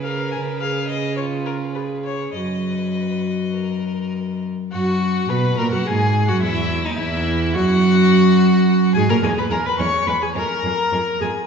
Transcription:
<<
  \new Staff \with { instrumentName = "Violin" } { \time 4/4 \key b \major \tempo 4 = 105 eis''8 gis''8 eis''8 dis''8 cis''8 ais'8 b'8 cis''8 | dis''2.~ dis''8 r8 | fis''4 b''8 ais''16 fis''16 gis''8. fis''16 e''8. dis''16 | e''4 fis''2~ fis''8 gis''16 ais''16 |
gis''16 b''16 ais''16 b''16 cis'''8 b''16 gis''16 bes''4. aes''8 | }
  \new Staff \with { instrumentName = "Viola" } { \time 4/4 \key b \major ais'4 gis'4 eis'4 gis'4 | fis'2.~ fis'8 r8 | fis'4 b'8 ais'16 fis'16 gis'8. fis'16 e'8. dis'16 | e'4 fis'2~ fis'8 gis'16 ais'16 |
gis'16 b'16 ais'16 b'16 cis''8 b'16 gis'16 bes'4. aes'8 | }
  \new Staff \with { instrumentName = "Violin" } { \time 4/4 \key b \major b'1 | b'2 ais'4. r8 | fis'4 b'8 ais'16 fis'16 gis'8. fis'16 e'8. dis'16 | e'4 fis'2~ fis'8 gis'16 ais'16 |
gis8 gis8 gis8 gis8 aes8 aes8 aes8 aes8 | }
  \new Staff \with { instrumentName = "Cello" } { \clef bass \time 4/4 \key b \major cis1 | fis,2.~ fis,8 r8 | fis,4 b,8 ais,16 fis,16 gis,8. fis,16 e,8. dis,16 | e,4 fis,2~ fis,8 gis,16 ais,16 |
e,8 e,8 e,8 e,8 f,8 f,8 f,8 f,8 | }
>>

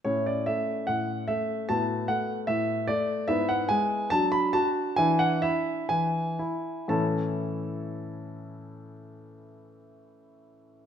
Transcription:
<<
  \new Staff \with { instrumentName = "Grand piano" } { \time 2/4 \key a \major \tempo 4 = 68 << { cis''16 d''16 e''8 fis''8 e''8 | a''8 fis''8 e''8 d''8 | e''16 fis''16 gis''8 a''16 b''16 a''8 | gis''16 fis''16 e''8 gis''4 |
<a, e cis' e' a' cis'' a''>2~ | <a, e cis' e' a' cis'' a''>2 | } \\ { <cis' e'>2 | <b fis'>2 | <b e'>4 d'4 | <d' e'>2 |
r2 | r2 | } >> }
  \new Staff \with { instrumentName = "Grand piano" } { \clef bass \time 2/4 \key a \major a,8 a8 a,8 a8 | a,8 a8 a,8 a8 | gis,8 gis8 fis8 fis'8 | e8 e'8 e8 e'8 |
r2 | r2 | }
>>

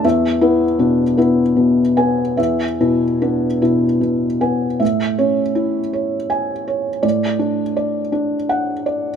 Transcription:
<<
  \new Staff \with { instrumentName = "Felt piano" } { \time 6/8 \key a \major \tempo 4. = 53 << { r2 r8 gis''8~ | gis''8 r2 r8 | r2 gis''4 | r2 fis''4 | } \\ { e''8 e'8 d'8 e'8 b,4 | e''8 e'8 d'8 e'8 b,8 gis''8 | e''8 cis''8 e'8 cis''4 cis''8 | d''8 d'8 d''8 d'4 d''8 | } >> }
  \new Staff \with { instrumentName = "Felt piano" } { \clef bass \time 6/8 \key a \major e,8 b8 b,8 b4 b8 | e,8 b,8 b8 b,4 b8 | a,8 cis'4 r4. | a,2. | }
>>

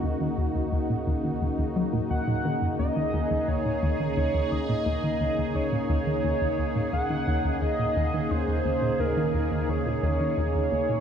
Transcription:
<<
  \new Staff \with { instrumentName = "Analog synth lead" } { \time 4/4 \key ees \minor \tempo 4 = 87 r2. ges''4 | ees''4 des''4 des''8 ees''4. | des''8 des''4. ges''4 ees''4 | c''4 bes'4 des''2 | }
  \new Staff \with { instrumentName = "Analog synth pad" } { \time 4/4 \key ees \minor << { ges'1 | aes'1~ | aes'1~ | aes'1 | } \\ { <des bes ees'>1~ | <des bes ees'>1~ | <des bes ees'>1~ | <des bes ees'>1 | } >> }
  \new Staff \with { instrumentName = "Synth arpeggio sound" } { \clef bass \time 4/4 \key ees \minor ees,16 ees16 ees,16 ees,16 ees,16 bes,16 ees,16 ees16 ees,16 ees,16 ges16 bes,16 ees,16 bes,16 ees16 ges,16 | ees,16 ees16 ees,16 ees,16 ees,16 bes,16 ees,16 ees16 ees,16 ees,16 ees,16 bes,16 ees,16 ees16 ees,16 ees,16 | ees,16 bes,16 ees,16 ees16 ees,16 ees,16 ees,16 bes,16 ees,16 ees16 ees,16 ees,16 ees,16 bes,16 ees,16 ees16 | ees,16 ees,16 ees,16 bes,16 ees,16 ees16 ees,16 ees,16 ees,16 bes,16 ees,16 ees16 ees,16 ees,16 ees,16 bes,16 | }
>>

